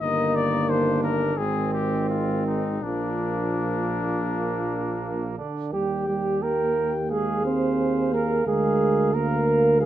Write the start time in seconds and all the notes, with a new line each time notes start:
0.01 G1 D#3 A#3 D#4 D#5
0.35 D5
0.69 D4 C5
1.03 A#4
1.37 G#1 D#3 G#3 C4 G#4
1.73 G4
2.09 F4
2.46 D#4
2.82 A#1 A#2 F3 A#3 D4
5.37 D3 D4
5.73 D#2 G3 G4 G5
6.07 G3 G4
6.42 A#3 G4 A#4 G5
7.11 G#3 G#4 F5
7.45 C4 C5
8.12 A#3 A#4
8.46 D2 G#3 G#4 A#4 F5
9.14 A#3 A#4 F5
9.80 G#3 G#4 A#4 F5